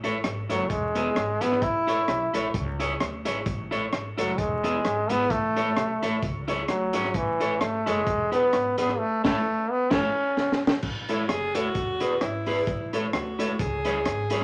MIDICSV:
0, 0, Header, 1, 7, 480
1, 0, Start_track
1, 0, Key_signature, 3, "major"
1, 0, Tempo, 460476
1, 1688, Time_signature, 4, 2, 24, 8
1, 15051, End_track
2, 0, Start_track
2, 0, Title_t, "Clean electric guitar"
2, 0, Program_c, 0, 27
2, 38, Note_on_c, 0, 64, 86
2, 45, Note_on_c, 0, 69, 86
2, 50, Note_on_c, 0, 73, 91
2, 168, Note_off_c, 0, 64, 0
2, 172, Note_off_c, 0, 69, 0
2, 174, Note_off_c, 0, 73, 0
2, 515, Note_on_c, 0, 64, 72
2, 526, Note_on_c, 0, 69, 81
2, 530, Note_on_c, 0, 73, 87
2, 647, Note_off_c, 0, 64, 0
2, 652, Note_off_c, 0, 69, 0
2, 654, Note_off_c, 0, 73, 0
2, 993, Note_on_c, 0, 59, 79
2, 1004, Note_on_c, 0, 64, 84
2, 1008, Note_on_c, 0, 68, 84
2, 1126, Note_off_c, 0, 59, 0
2, 1131, Note_off_c, 0, 64, 0
2, 1133, Note_off_c, 0, 68, 0
2, 1468, Note_on_c, 0, 59, 90
2, 1476, Note_on_c, 0, 64, 91
2, 1480, Note_on_c, 0, 68, 99
2, 1604, Note_off_c, 0, 59, 0
2, 1607, Note_off_c, 0, 64, 0
2, 1609, Note_off_c, 0, 68, 0
2, 1951, Note_on_c, 0, 64, 78
2, 1958, Note_on_c, 0, 69, 84
2, 1965, Note_on_c, 0, 73, 93
2, 2085, Note_off_c, 0, 64, 0
2, 2088, Note_off_c, 0, 69, 0
2, 2092, Note_off_c, 0, 73, 0
2, 2435, Note_on_c, 0, 64, 82
2, 2444, Note_on_c, 0, 69, 88
2, 2449, Note_on_c, 0, 73, 100
2, 2567, Note_off_c, 0, 64, 0
2, 2571, Note_off_c, 0, 69, 0
2, 2574, Note_off_c, 0, 73, 0
2, 2914, Note_on_c, 0, 64, 74
2, 2922, Note_on_c, 0, 68, 85
2, 2927, Note_on_c, 0, 73, 80
2, 3046, Note_off_c, 0, 64, 0
2, 3050, Note_off_c, 0, 68, 0
2, 3053, Note_off_c, 0, 73, 0
2, 3390, Note_on_c, 0, 64, 79
2, 3396, Note_on_c, 0, 68, 80
2, 3402, Note_on_c, 0, 73, 89
2, 3525, Note_off_c, 0, 64, 0
2, 3528, Note_off_c, 0, 68, 0
2, 3531, Note_off_c, 0, 73, 0
2, 3868, Note_on_c, 0, 64, 88
2, 3875, Note_on_c, 0, 69, 84
2, 3884, Note_on_c, 0, 73, 94
2, 4004, Note_off_c, 0, 64, 0
2, 4007, Note_off_c, 0, 69, 0
2, 4011, Note_off_c, 0, 73, 0
2, 4352, Note_on_c, 0, 64, 78
2, 4362, Note_on_c, 0, 69, 84
2, 4366, Note_on_c, 0, 73, 81
2, 4486, Note_off_c, 0, 64, 0
2, 4490, Note_off_c, 0, 69, 0
2, 4493, Note_off_c, 0, 73, 0
2, 4833, Note_on_c, 0, 59, 77
2, 4839, Note_on_c, 0, 64, 84
2, 4845, Note_on_c, 0, 68, 86
2, 4966, Note_off_c, 0, 59, 0
2, 4969, Note_off_c, 0, 64, 0
2, 4972, Note_off_c, 0, 68, 0
2, 5314, Note_on_c, 0, 59, 82
2, 5324, Note_on_c, 0, 64, 93
2, 5329, Note_on_c, 0, 68, 99
2, 5447, Note_off_c, 0, 59, 0
2, 5452, Note_off_c, 0, 64, 0
2, 5454, Note_off_c, 0, 68, 0
2, 5800, Note_on_c, 0, 64, 81
2, 5805, Note_on_c, 0, 69, 84
2, 5812, Note_on_c, 0, 73, 96
2, 5930, Note_off_c, 0, 64, 0
2, 5933, Note_off_c, 0, 69, 0
2, 5936, Note_off_c, 0, 73, 0
2, 6280, Note_on_c, 0, 64, 88
2, 6288, Note_on_c, 0, 69, 90
2, 6293, Note_on_c, 0, 73, 89
2, 6410, Note_off_c, 0, 64, 0
2, 6414, Note_off_c, 0, 69, 0
2, 6417, Note_off_c, 0, 73, 0
2, 6752, Note_on_c, 0, 64, 92
2, 6762, Note_on_c, 0, 68, 86
2, 6767, Note_on_c, 0, 73, 93
2, 6886, Note_off_c, 0, 64, 0
2, 6891, Note_off_c, 0, 68, 0
2, 6893, Note_off_c, 0, 73, 0
2, 7231, Note_on_c, 0, 64, 75
2, 7242, Note_on_c, 0, 68, 90
2, 7249, Note_on_c, 0, 73, 102
2, 7366, Note_off_c, 0, 64, 0
2, 7371, Note_off_c, 0, 68, 0
2, 7374, Note_off_c, 0, 73, 0
2, 7717, Note_on_c, 0, 64, 77
2, 7724, Note_on_c, 0, 69, 88
2, 7731, Note_on_c, 0, 73, 89
2, 7849, Note_off_c, 0, 64, 0
2, 7852, Note_off_c, 0, 69, 0
2, 7856, Note_off_c, 0, 73, 0
2, 8195, Note_on_c, 0, 64, 81
2, 8205, Note_on_c, 0, 69, 85
2, 8210, Note_on_c, 0, 73, 82
2, 8328, Note_off_c, 0, 64, 0
2, 8333, Note_off_c, 0, 69, 0
2, 8335, Note_off_c, 0, 73, 0
2, 8670, Note_on_c, 0, 64, 77
2, 8678, Note_on_c, 0, 68, 72
2, 8686, Note_on_c, 0, 71, 84
2, 8805, Note_off_c, 0, 64, 0
2, 8810, Note_off_c, 0, 68, 0
2, 8813, Note_off_c, 0, 71, 0
2, 9151, Note_on_c, 0, 64, 73
2, 9156, Note_on_c, 0, 68, 86
2, 9163, Note_on_c, 0, 71, 85
2, 9286, Note_off_c, 0, 64, 0
2, 9289, Note_off_c, 0, 68, 0
2, 9292, Note_off_c, 0, 71, 0
2, 9634, Note_on_c, 0, 64, 105
2, 9639, Note_on_c, 0, 69, 98
2, 9647, Note_on_c, 0, 73, 103
2, 9779, Note_off_c, 0, 64, 0
2, 9782, Note_off_c, 0, 69, 0
2, 9787, Note_off_c, 0, 73, 0
2, 10324, Note_on_c, 0, 64, 97
2, 10333, Note_on_c, 0, 69, 97
2, 10337, Note_on_c, 0, 73, 93
2, 10511, Note_off_c, 0, 64, 0
2, 10516, Note_off_c, 0, 69, 0
2, 10518, Note_off_c, 0, 73, 0
2, 11563, Note_on_c, 0, 64, 83
2, 11568, Note_on_c, 0, 69, 89
2, 11577, Note_on_c, 0, 73, 99
2, 11693, Note_off_c, 0, 64, 0
2, 11695, Note_off_c, 0, 69, 0
2, 11700, Note_off_c, 0, 73, 0
2, 12038, Note_on_c, 0, 64, 81
2, 12042, Note_on_c, 0, 69, 91
2, 12049, Note_on_c, 0, 73, 97
2, 12170, Note_off_c, 0, 64, 0
2, 12172, Note_off_c, 0, 69, 0
2, 12176, Note_off_c, 0, 73, 0
2, 12515, Note_on_c, 0, 64, 76
2, 12523, Note_on_c, 0, 68, 72
2, 12533, Note_on_c, 0, 71, 82
2, 12649, Note_off_c, 0, 64, 0
2, 12653, Note_off_c, 0, 68, 0
2, 12658, Note_off_c, 0, 71, 0
2, 12997, Note_on_c, 0, 64, 80
2, 13003, Note_on_c, 0, 68, 92
2, 13013, Note_on_c, 0, 71, 92
2, 13130, Note_off_c, 0, 64, 0
2, 13133, Note_off_c, 0, 68, 0
2, 13137, Note_off_c, 0, 71, 0
2, 13482, Note_on_c, 0, 64, 79
2, 13486, Note_on_c, 0, 69, 82
2, 13495, Note_on_c, 0, 73, 90
2, 13612, Note_off_c, 0, 64, 0
2, 13614, Note_off_c, 0, 69, 0
2, 13619, Note_off_c, 0, 73, 0
2, 13956, Note_on_c, 0, 64, 79
2, 13963, Note_on_c, 0, 69, 80
2, 13969, Note_on_c, 0, 73, 85
2, 14089, Note_off_c, 0, 64, 0
2, 14093, Note_off_c, 0, 69, 0
2, 14096, Note_off_c, 0, 73, 0
2, 14440, Note_on_c, 0, 64, 85
2, 14446, Note_on_c, 0, 68, 89
2, 14453, Note_on_c, 0, 73, 100
2, 14571, Note_off_c, 0, 64, 0
2, 14574, Note_off_c, 0, 68, 0
2, 14577, Note_off_c, 0, 73, 0
2, 14913, Note_on_c, 0, 64, 82
2, 14922, Note_on_c, 0, 68, 89
2, 14928, Note_on_c, 0, 73, 94
2, 15048, Note_off_c, 0, 64, 0
2, 15051, Note_off_c, 0, 68, 0
2, 15051, Note_off_c, 0, 73, 0
2, 15051, End_track
3, 0, Start_track
3, 0, Title_t, "Alto saxophone"
3, 0, Program_c, 1, 65
3, 11566, Note_on_c, 1, 64, 91
3, 11765, Note_on_c, 1, 68, 102
3, 11781, Note_off_c, 1, 64, 0
3, 12032, Note_on_c, 1, 66, 111
3, 12048, Note_off_c, 1, 68, 0
3, 12731, Note_on_c, 1, 64, 86
3, 12747, Note_off_c, 1, 66, 0
3, 13482, Note_off_c, 1, 64, 0
3, 13702, Note_on_c, 1, 66, 81
3, 14144, Note_off_c, 1, 66, 0
3, 14176, Note_on_c, 1, 68, 92
3, 15051, Note_off_c, 1, 68, 0
3, 15051, End_track
4, 0, Start_track
4, 0, Title_t, "Trombone"
4, 0, Program_c, 2, 57
4, 527, Note_on_c, 2, 54, 80
4, 734, Note_on_c, 2, 56, 89
4, 749, Note_off_c, 2, 54, 0
4, 1484, Note_on_c, 2, 59, 101
4, 1500, Note_off_c, 2, 56, 0
4, 1697, Note_on_c, 2, 64, 101
4, 1713, Note_off_c, 2, 59, 0
4, 2653, Note_off_c, 2, 64, 0
4, 4356, Note_on_c, 2, 54, 84
4, 4565, Note_on_c, 2, 56, 96
4, 4580, Note_off_c, 2, 54, 0
4, 5321, Note_on_c, 2, 59, 108
4, 5337, Note_off_c, 2, 56, 0
4, 5533, Note_on_c, 2, 57, 97
4, 5548, Note_off_c, 2, 59, 0
4, 6491, Note_off_c, 2, 57, 0
4, 6982, Note_on_c, 2, 54, 87
4, 7468, Note_on_c, 2, 52, 91
4, 7484, Note_off_c, 2, 54, 0
4, 7934, Note_on_c, 2, 57, 91
4, 7950, Note_off_c, 2, 52, 0
4, 8212, Note_on_c, 2, 56, 99
4, 8227, Note_off_c, 2, 57, 0
4, 8672, Note_off_c, 2, 56, 0
4, 8678, Note_on_c, 2, 59, 99
4, 9126, Note_off_c, 2, 59, 0
4, 9162, Note_on_c, 2, 59, 96
4, 9368, Note_on_c, 2, 57, 99
4, 9384, Note_off_c, 2, 59, 0
4, 9628, Note_off_c, 2, 57, 0
4, 9634, Note_on_c, 2, 57, 109
4, 10119, Note_on_c, 2, 59, 106
4, 10134, Note_off_c, 2, 57, 0
4, 10342, Note_on_c, 2, 61, 103
4, 10357, Note_off_c, 2, 59, 0
4, 11087, Note_off_c, 2, 61, 0
4, 15051, End_track
5, 0, Start_track
5, 0, Title_t, "Upright bass"
5, 0, Program_c, 3, 32
5, 0, Note_on_c, 3, 33, 106
5, 179, Note_off_c, 3, 33, 0
5, 255, Note_on_c, 3, 32, 93
5, 482, Note_off_c, 3, 32, 0
5, 522, Note_on_c, 3, 30, 100
5, 698, Note_off_c, 3, 30, 0
5, 732, Note_on_c, 3, 28, 101
5, 1138, Note_off_c, 3, 28, 0
5, 1218, Note_on_c, 3, 32, 97
5, 1444, Note_off_c, 3, 32, 0
5, 1484, Note_on_c, 3, 32, 83
5, 1659, Note_off_c, 3, 32, 0
5, 1692, Note_on_c, 3, 33, 105
5, 2098, Note_off_c, 3, 33, 0
5, 2174, Note_on_c, 3, 35, 94
5, 2401, Note_off_c, 3, 35, 0
5, 2446, Note_on_c, 3, 33, 88
5, 2621, Note_off_c, 3, 33, 0
5, 2655, Note_on_c, 3, 37, 111
5, 3060, Note_off_c, 3, 37, 0
5, 3137, Note_on_c, 3, 38, 85
5, 3363, Note_off_c, 3, 38, 0
5, 3406, Note_on_c, 3, 32, 81
5, 3581, Note_off_c, 3, 32, 0
5, 3612, Note_on_c, 3, 33, 102
5, 4019, Note_off_c, 3, 33, 0
5, 4095, Note_on_c, 3, 32, 89
5, 4322, Note_off_c, 3, 32, 0
5, 4363, Note_on_c, 3, 30, 90
5, 4540, Note_off_c, 3, 30, 0
5, 4570, Note_on_c, 3, 28, 99
5, 4977, Note_off_c, 3, 28, 0
5, 5053, Note_on_c, 3, 32, 99
5, 5281, Note_off_c, 3, 32, 0
5, 5322, Note_on_c, 3, 32, 89
5, 5499, Note_off_c, 3, 32, 0
5, 5531, Note_on_c, 3, 33, 110
5, 5938, Note_off_c, 3, 33, 0
5, 6013, Note_on_c, 3, 35, 91
5, 6241, Note_off_c, 3, 35, 0
5, 6284, Note_on_c, 3, 33, 85
5, 6460, Note_off_c, 3, 33, 0
5, 6493, Note_on_c, 3, 37, 101
5, 6899, Note_off_c, 3, 37, 0
5, 6975, Note_on_c, 3, 38, 89
5, 7202, Note_off_c, 3, 38, 0
5, 7248, Note_on_c, 3, 32, 78
5, 7423, Note_off_c, 3, 32, 0
5, 7452, Note_on_c, 3, 33, 98
5, 7859, Note_off_c, 3, 33, 0
5, 7935, Note_on_c, 3, 32, 87
5, 8163, Note_off_c, 3, 32, 0
5, 8207, Note_on_c, 3, 30, 102
5, 8382, Note_off_c, 3, 30, 0
5, 8412, Note_on_c, 3, 28, 103
5, 8819, Note_off_c, 3, 28, 0
5, 8896, Note_on_c, 3, 32, 95
5, 9124, Note_off_c, 3, 32, 0
5, 9172, Note_on_c, 3, 32, 87
5, 9345, Note_off_c, 3, 32, 0
5, 9643, Note_on_c, 3, 33, 102
5, 9785, Note_off_c, 3, 33, 0
5, 10333, Note_on_c, 3, 33, 106
5, 10516, Note_off_c, 3, 33, 0
5, 11293, Note_on_c, 3, 33, 108
5, 11700, Note_off_c, 3, 33, 0
5, 11778, Note_on_c, 3, 30, 83
5, 12183, Note_off_c, 3, 30, 0
5, 12253, Note_on_c, 3, 28, 95
5, 12660, Note_off_c, 3, 28, 0
5, 12740, Note_on_c, 3, 32, 87
5, 13144, Note_off_c, 3, 32, 0
5, 13213, Note_on_c, 3, 33, 106
5, 13620, Note_off_c, 3, 33, 0
5, 13698, Note_on_c, 3, 38, 89
5, 14103, Note_off_c, 3, 38, 0
5, 14173, Note_on_c, 3, 37, 99
5, 14654, Note_on_c, 3, 32, 95
5, 14670, Note_off_c, 3, 37, 0
5, 15051, Note_off_c, 3, 32, 0
5, 15051, End_track
6, 0, Start_track
6, 0, Title_t, "Muted clean electric guitar strokes"
6, 1198, Note_on_c, 9, 29, 40
6, 1303, Note_off_c, 9, 29, 0
6, 5046, Note_on_c, 9, 29, 38
6, 5150, Note_off_c, 9, 29, 0
6, 8882, Note_on_c, 9, 29, 41
6, 8987, Note_off_c, 9, 29, 0
6, 15051, End_track
7, 0, Start_track
7, 0, Title_t, "Drums"
7, 42, Note_on_c, 9, 42, 74
7, 146, Note_off_c, 9, 42, 0
7, 250, Note_on_c, 9, 37, 110
7, 252, Note_on_c, 9, 42, 81
7, 354, Note_off_c, 9, 37, 0
7, 356, Note_off_c, 9, 42, 0
7, 520, Note_on_c, 9, 42, 106
7, 624, Note_off_c, 9, 42, 0
7, 729, Note_on_c, 9, 36, 102
7, 730, Note_on_c, 9, 42, 84
7, 833, Note_off_c, 9, 36, 0
7, 834, Note_off_c, 9, 42, 0
7, 994, Note_on_c, 9, 42, 84
7, 1099, Note_off_c, 9, 42, 0
7, 1209, Note_on_c, 9, 42, 83
7, 1211, Note_on_c, 9, 37, 110
7, 1314, Note_off_c, 9, 42, 0
7, 1316, Note_off_c, 9, 37, 0
7, 1472, Note_on_c, 9, 42, 100
7, 1576, Note_off_c, 9, 42, 0
7, 1586, Note_on_c, 9, 37, 66
7, 1687, Note_on_c, 9, 42, 73
7, 1688, Note_on_c, 9, 36, 108
7, 1690, Note_off_c, 9, 37, 0
7, 1791, Note_off_c, 9, 42, 0
7, 1792, Note_off_c, 9, 36, 0
7, 1959, Note_on_c, 9, 42, 78
7, 2063, Note_off_c, 9, 42, 0
7, 2169, Note_on_c, 9, 37, 106
7, 2170, Note_on_c, 9, 42, 73
7, 2273, Note_off_c, 9, 37, 0
7, 2274, Note_off_c, 9, 42, 0
7, 2440, Note_on_c, 9, 42, 102
7, 2544, Note_off_c, 9, 42, 0
7, 2649, Note_on_c, 9, 36, 103
7, 2651, Note_on_c, 9, 42, 77
7, 2753, Note_off_c, 9, 36, 0
7, 2755, Note_off_c, 9, 42, 0
7, 2919, Note_on_c, 9, 42, 88
7, 3023, Note_off_c, 9, 42, 0
7, 3130, Note_on_c, 9, 42, 80
7, 3132, Note_on_c, 9, 37, 108
7, 3234, Note_off_c, 9, 42, 0
7, 3236, Note_off_c, 9, 37, 0
7, 3391, Note_on_c, 9, 42, 102
7, 3496, Note_off_c, 9, 42, 0
7, 3606, Note_on_c, 9, 42, 69
7, 3607, Note_on_c, 9, 36, 108
7, 3710, Note_off_c, 9, 42, 0
7, 3712, Note_off_c, 9, 36, 0
7, 3879, Note_on_c, 9, 42, 78
7, 3984, Note_off_c, 9, 42, 0
7, 4092, Note_on_c, 9, 37, 110
7, 4094, Note_on_c, 9, 42, 76
7, 4197, Note_off_c, 9, 37, 0
7, 4198, Note_off_c, 9, 42, 0
7, 4360, Note_on_c, 9, 42, 101
7, 4464, Note_off_c, 9, 42, 0
7, 4568, Note_on_c, 9, 36, 109
7, 4571, Note_on_c, 9, 42, 76
7, 4672, Note_off_c, 9, 36, 0
7, 4675, Note_off_c, 9, 42, 0
7, 4836, Note_on_c, 9, 42, 86
7, 4941, Note_off_c, 9, 42, 0
7, 5051, Note_on_c, 9, 42, 78
7, 5053, Note_on_c, 9, 37, 104
7, 5155, Note_off_c, 9, 42, 0
7, 5157, Note_off_c, 9, 37, 0
7, 5311, Note_on_c, 9, 42, 100
7, 5415, Note_off_c, 9, 42, 0
7, 5528, Note_on_c, 9, 36, 108
7, 5530, Note_on_c, 9, 42, 72
7, 5632, Note_off_c, 9, 36, 0
7, 5634, Note_off_c, 9, 42, 0
7, 5800, Note_on_c, 9, 42, 72
7, 5905, Note_off_c, 9, 42, 0
7, 6010, Note_on_c, 9, 37, 109
7, 6012, Note_on_c, 9, 42, 74
7, 6114, Note_off_c, 9, 37, 0
7, 6116, Note_off_c, 9, 42, 0
7, 6282, Note_on_c, 9, 42, 100
7, 6386, Note_off_c, 9, 42, 0
7, 6489, Note_on_c, 9, 36, 109
7, 6490, Note_on_c, 9, 42, 78
7, 6593, Note_off_c, 9, 36, 0
7, 6594, Note_off_c, 9, 42, 0
7, 6756, Note_on_c, 9, 42, 89
7, 6860, Note_off_c, 9, 42, 0
7, 6966, Note_on_c, 9, 42, 81
7, 6968, Note_on_c, 9, 37, 101
7, 7070, Note_off_c, 9, 42, 0
7, 7072, Note_off_c, 9, 37, 0
7, 7226, Note_on_c, 9, 42, 105
7, 7330, Note_off_c, 9, 42, 0
7, 7344, Note_on_c, 9, 37, 73
7, 7444, Note_on_c, 9, 42, 74
7, 7447, Note_on_c, 9, 36, 115
7, 7448, Note_off_c, 9, 37, 0
7, 7548, Note_off_c, 9, 42, 0
7, 7551, Note_off_c, 9, 36, 0
7, 7720, Note_on_c, 9, 42, 75
7, 7824, Note_off_c, 9, 42, 0
7, 7930, Note_on_c, 9, 37, 110
7, 7932, Note_on_c, 9, 42, 79
7, 8035, Note_off_c, 9, 37, 0
7, 8036, Note_off_c, 9, 42, 0
7, 8203, Note_on_c, 9, 42, 102
7, 8307, Note_off_c, 9, 42, 0
7, 8409, Note_on_c, 9, 36, 107
7, 8411, Note_on_c, 9, 42, 76
7, 8513, Note_off_c, 9, 36, 0
7, 8515, Note_off_c, 9, 42, 0
7, 8676, Note_on_c, 9, 42, 85
7, 8780, Note_off_c, 9, 42, 0
7, 8890, Note_on_c, 9, 42, 83
7, 8892, Note_on_c, 9, 37, 108
7, 8994, Note_off_c, 9, 42, 0
7, 8996, Note_off_c, 9, 37, 0
7, 9150, Note_on_c, 9, 42, 100
7, 9254, Note_off_c, 9, 42, 0
7, 9267, Note_on_c, 9, 37, 69
7, 9371, Note_off_c, 9, 37, 0
7, 9638, Note_on_c, 9, 38, 104
7, 9638, Note_on_c, 9, 49, 75
7, 9639, Note_on_c, 9, 36, 113
7, 9742, Note_off_c, 9, 38, 0
7, 9742, Note_off_c, 9, 49, 0
7, 9744, Note_off_c, 9, 36, 0
7, 10330, Note_on_c, 9, 38, 104
7, 10330, Note_on_c, 9, 49, 82
7, 10331, Note_on_c, 9, 36, 108
7, 10435, Note_off_c, 9, 36, 0
7, 10435, Note_off_c, 9, 38, 0
7, 10435, Note_off_c, 9, 49, 0
7, 10812, Note_on_c, 9, 38, 52
7, 10916, Note_off_c, 9, 38, 0
7, 10969, Note_on_c, 9, 38, 68
7, 11073, Note_off_c, 9, 38, 0
7, 11126, Note_on_c, 9, 38, 112
7, 11230, Note_off_c, 9, 38, 0
7, 11284, Note_on_c, 9, 49, 100
7, 11289, Note_on_c, 9, 36, 118
7, 11388, Note_off_c, 9, 49, 0
7, 11393, Note_off_c, 9, 36, 0
7, 11555, Note_on_c, 9, 42, 79
7, 11659, Note_off_c, 9, 42, 0
7, 11768, Note_on_c, 9, 37, 109
7, 11770, Note_on_c, 9, 42, 78
7, 11873, Note_off_c, 9, 37, 0
7, 11874, Note_off_c, 9, 42, 0
7, 12036, Note_on_c, 9, 42, 99
7, 12141, Note_off_c, 9, 42, 0
7, 12245, Note_on_c, 9, 42, 78
7, 12249, Note_on_c, 9, 36, 109
7, 12349, Note_off_c, 9, 42, 0
7, 12353, Note_off_c, 9, 36, 0
7, 12510, Note_on_c, 9, 42, 89
7, 12614, Note_off_c, 9, 42, 0
7, 12727, Note_on_c, 9, 42, 77
7, 12729, Note_on_c, 9, 37, 102
7, 12832, Note_off_c, 9, 42, 0
7, 12834, Note_off_c, 9, 37, 0
7, 12991, Note_on_c, 9, 46, 62
7, 13096, Note_off_c, 9, 46, 0
7, 13206, Note_on_c, 9, 42, 72
7, 13210, Note_on_c, 9, 36, 110
7, 13310, Note_off_c, 9, 42, 0
7, 13314, Note_off_c, 9, 36, 0
7, 13480, Note_on_c, 9, 42, 78
7, 13584, Note_off_c, 9, 42, 0
7, 13690, Note_on_c, 9, 37, 115
7, 13691, Note_on_c, 9, 42, 77
7, 13794, Note_off_c, 9, 37, 0
7, 13796, Note_off_c, 9, 42, 0
7, 13963, Note_on_c, 9, 42, 102
7, 14067, Note_off_c, 9, 42, 0
7, 14170, Note_on_c, 9, 36, 111
7, 14172, Note_on_c, 9, 42, 83
7, 14274, Note_off_c, 9, 36, 0
7, 14276, Note_off_c, 9, 42, 0
7, 14433, Note_on_c, 9, 42, 91
7, 14537, Note_off_c, 9, 42, 0
7, 14650, Note_on_c, 9, 42, 88
7, 14652, Note_on_c, 9, 37, 110
7, 14754, Note_off_c, 9, 42, 0
7, 14756, Note_off_c, 9, 37, 0
7, 14906, Note_on_c, 9, 42, 108
7, 15010, Note_off_c, 9, 42, 0
7, 15051, End_track
0, 0, End_of_file